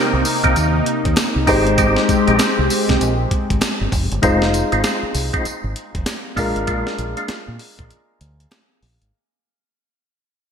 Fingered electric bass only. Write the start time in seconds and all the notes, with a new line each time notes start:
0.13 C2
0.44 C2
0.56 D#2
1.05 D#2
1.17 muted fingered electric bass stroke
1.36 C2
1.47 G#1
2.28 A#1
2.59 C2
2.89 C2
3.01 A#1
3.50 G#1
3.81 G1
3.92 F1
4.12 G1
4.23 F1
4.73 G#1
5.03 muted fingered electric bass stroke
5.15 C2
5.45 muted fingered electric bass stroke
5.64 G#1
5.95 F1
6.37 A#1
6.56 G#1
6.68 A#1
6.99 A#1
7.29 muted fingered electric bass stroke
7.48 A#2
7.79 A#1
8.21 D2
8.83 A#1
9.02 G#1